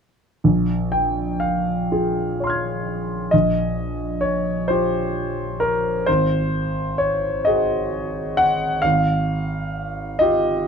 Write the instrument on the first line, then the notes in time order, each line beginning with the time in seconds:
grand piano
0.44 A#1
0.92 G5
1.40 F5
1.92 F4 G#4
2.40 C#5 C6
2.47 F6 G#6
3.31 A#1 D#5
4.21 C#5
4.68 F4 G4 C5
5.60 A#4
6.06 G#1 C5
6.98 C#5
7.45 F#4 G#4 D#5
8.37 F#5
8.82 G#1 F5
10.19 F4 G4 D#5